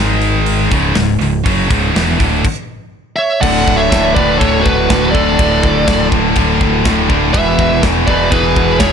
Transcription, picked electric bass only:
0.00 0.67 G#1 loud
0.72 0.94 C#1 loud
0.94 1.18 C#1 medium
1.19 1.43 C#1 medium
1.46 1.68 F#1 loud
1.70 1.93 C#1 medium
1.95 2.17 E1 medium
2.20 2.43 D1 medium
3.43 3.64 D1 loud
3.67 3.89 D1 loud
3.92 4.13 D1 medium
4.16 4.38 D1 medium
4.41 4.63 D1 medium
4.66 4.87 D1 loud
4.90 5.12 D1 medium
5.14 5.36 D1 medium
5.39 5.60 D1 medium
5.64 5.85 D1 loud
5.88 6.09 D1 medium
6.12 6.33 D1 loud
6.37 6.58 D1 medium
6.60 6.82 D1 medium
6.85 7.07 D1 medium
7.10 7.31 D1 medium
7.34 7.56 E1 loud
7.58 7.80 E1 loud
7.84 8.05 E1 medium
8.07 8.29 E1 medium
8.32 8.53 E1 medium
8.56 8.78 E1 loud
8.81 8.92 E1 medium

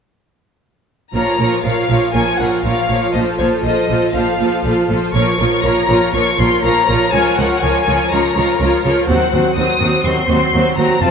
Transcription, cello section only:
1.15 1.23 A#2 soft
1.40 1.48 A#2 soft
1.64 1.72 A#2 soft
1.89 1.97 A#2 soft
2.14 2.22 A#2 soft
2.40 2.48 A#2 soft
2.65 2.73 A#2 soft
2.90 2.98 A#2 soft
3.15 3.23 A#2 soft
3.40 3.48 A#2 soft
3.64 3.72 A#2 soft
3.90 3.98 A#2 soft
4.15 4.23 A#2 soft
4.40 4.48 A#2 soft
4.65 4.73 A#2 soft
4.90 4.98 A#2 soft
5.15 5.23 A#2 soft
5.39 5.47 A#2 soft
5.64 5.72 A#2 soft
5.88 5.96 A#2 soft
6.13 6.21 A#2 medium
6.39 6.47 A#2 soft
6.63 6.71 A#2 soft
6.89 6.97 A#2 soft
7.14 7.22 C#2 soft
7.38 7.46 C#2 soft
7.63 7.71 C#2 soft
7.88 7.96 C#2 soft
8.13 8.21 C#2 medium
8.37 8.45 C#2 soft
8.60 8.68 C#2 soft
8.85 8.93 C#2 soft
9.09 9.17 D#2 soft
9.33 9.41 D#2 soft
9.57 9.65 D#2 soft
9.81 9.89 D#2 medium
10.05 10.13 D#2 medium
10.29 10.37 D#2 soft
10.54 10.62 D#2 soft
10.78 10.86 D#2 soft
11.02 11.10 F2 medium

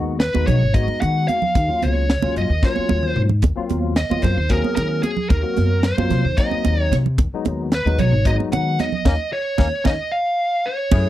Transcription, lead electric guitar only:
0.20 0.47 B4 medium
0.47 0.72 C#5 medium
0.74 1.01 D#5 medium
1.01 1.26 F#5 medium
1.28 1.83 F5 medium
1.83 2.33 C#5 medium
2.38 2.64 D#5 medium
2.65 3.04 C#5 medium
3.04 3.20 C5 medium
3.97 4.23 D#5 medium
4.23 4.51 C5 medium
4.50 4.75 A#4 medium
4.76 5.03 A#4 medium
5.03 5.28 G#4 medium
5.30 5.85 A#4 medium
5.84 6.38 C5 medium
6.38 6.81 D#5 medium
6.81 6.94 C#5 medium
7.75 8.01 B4 medium
7.99 8.24 C#5 medium
8.27 8.34 D#5 medium
8.53 8.77 F#5 medium
8.80 9.29 D#5 medium
9.33 9.86 C#5 medium
9.86 10.10 D#5 medium
10.12 10.68 F5 medium
10.66 11.09 C#5 medium

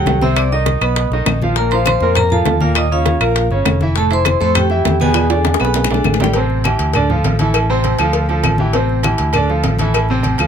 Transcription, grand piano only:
0.00 0.17 F#3 medium
0.00 0.17 F#4 medium
0.00 0.17 F#5 medium
0.22 0.47 C3 medium
0.22 0.47 C4 medium
0.22 0.47 C5 medium
0.52 0.77 D#3 medium
0.52 0.77 D#4 medium
0.52 0.77 D#5 medium
0.82 1.07 B3 medium
0.82 1.07 B4 medium
0.82 1.07 B5 medium
1.13 1.37 D#3 medium
1.13 1.37 D#4 medium
1.13 1.37 D#5 medium
1.42 1.54 F3 medium
1.42 1.55 F4 medium
1.42 1.55 F5 medium
1.58 1.70 A#2 medium
1.58 1.70 A#3 medium
1.58 1.70 A#4 medium
1.73 1.97 F3 medium
1.73 1.97 F4 medium
1.73 1.98 F5 medium
2.02 2.26 A#2 medium
2.02 2.27 A#3 medium
2.02 2.27 A#4 medium
2.31 2.56 F3 medium
2.31 2.56 F4 medium
2.31 2.56 F5 medium
2.61 2.86 A#2 medium
2.61 2.86 A#3 medium
2.61 2.86 A#4 medium
2.91 3.16 C#3 medium
2.91 3.16 C#4 medium
2.91 3.16 C#5 medium
3.21 3.46 A#3 medium
3.21 3.46 A#4 medium
3.21 3.46 A#5 medium
3.51 3.76 C#3 medium
3.51 3.76 C#4 medium
3.51 3.76 C#5 medium
3.82 3.94 E3 medium
3.82 3.94 E4 medium
3.82 3.94 E5 medium
3.96 4.08 A2 medium
3.96 4.08 A3 medium
3.96 4.09 A4 medium
4.11 4.35 E3 medium
4.11 4.35 E4 medium
4.11 4.35 E5 medium
4.40 4.65 A2 medium
4.40 4.65 A3 medium
4.40 4.65 A4 medium
4.70 4.95 E3 medium
4.70 4.95 E4 medium
4.70 4.95 E5 medium
5.01 5.25 B2 medium
5.01 5.25 B3 medium
5.01 5.25 B4 loud
5.31 5.55 D3 medium
5.31 5.55 D4 medium
5.31 5.55 D5 medium
5.60 5.85 B3 medium
5.60 5.85 B4 medium
5.60 5.85 B5 medium
5.91 6.15 D3 medium
5.91 6.15 D4 medium
5.91 6.16 D5 medium
6.21 6.33 G3 medium
6.21 6.33 G4 medium
6.21 6.33 G5 medium
6.36 6.60 C3 medium
6.36 6.60 C4 medium
6.36 6.61 C5 medium
6.66 6.90 E3 medium
6.66 6.90 E4 medium
6.66 6.90 G4 medium
6.95 7.08 D3 medium
6.95 7.08 D4 medium
6.95 7.08 D5 medium
7.10 7.34 F3 medium
7.10 7.35 F4 medium
7.10 7.35 A4 medium
7.40 7.65 E3 medium
7.40 7.65 E4 medium
7.40 7.65 A4 medium
7.70 7.94 C3 medium
7.70 7.94 C4 medium
7.70 7.95 C5 medium
8.00 8.24 F3 medium
8.00 8.24 F4 medium
8.00 8.25 A4 medium
8.29 8.54 F3 medium
8.29 8.54 F4 medium
8.29 8.54 A4 medium
8.59 8.72 E3 medium
8.59 8.72 E4 medium
8.59 8.72 G4 medium
8.74 8.99 C3 medium
8.74 8.99 C4 medium
8.74 9.00 C5 medium
9.04 9.29 E3 medium
9.04 9.29 E4 medium
9.04 9.29 G4 medium
9.34 9.47 D3 medium
9.34 9.47 D4 medium
9.34 9.47 D5 medium
9.49 9.74 F3 medium
9.49 9.74 F4 medium
9.49 9.74 A4 medium
9.80 10.04 E3 medium
9.80 10.04 E4 medium
9.80 10.04 A4 medium
10.10 10.34 C3 medium
10.10 10.35 C4 medium
10.10 10.35 C5 medium
10.40 10.47 F3 medium
10.40 10.47 F4 medium
10.40 10.47 A4 medium

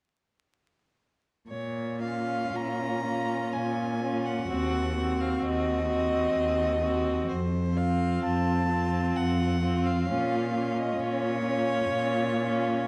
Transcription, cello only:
1.50 2.44 A#2 soft
2.55 3.42 A#2 soft
3.55 4.39 A#2 soft
4.50 5.32 D#2 soft
5.43 6.24 D#2 soft
6.35 7.18 D#2 soft
7.30 8.13 F2 soft
8.23 9.06 F2 soft
9.17 9.98 F2 soft
10.09 10.89 A#2 soft
10.99 11.81 A#2 soft
11.91 12.78 A#2 medium

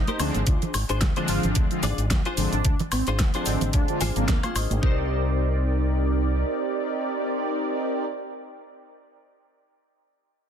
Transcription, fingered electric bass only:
0.20 0.29 D2 loud
0.35 0.43 G#1 medium
0.47 0.57 D2 loud
0.74 0.84 G#1 medium
0.89 1.03 G#1 medium
1.02 1.11 D2 medium
1.29 1.38 G#1 medium
1.44 1.52 G#1 medium
1.56 1.66 D2 loud
1.83 1.93 G#1 loud
1.98 2.12 G#1 medium
2.11 2.20 D2 medium
2.37 2.47 G#1 loud
2.52 2.60 G#1 medium
2.65 2.75 D2 loud
2.92 3.02 G#1 medium
3.07 3.21 G#1 medium
3.19 3.29 D2 medium
3.47 3.56 G#1 medium
3.62 3.69 G#1 medium
3.74 3.84 D2 loud
4.01 4.11 G#1 medium
4.16 4.24 G#1 medium
4.28 4.38 D2 loud
4.55 4.65 G#1 medium
4.71 4.79 G#1 loud

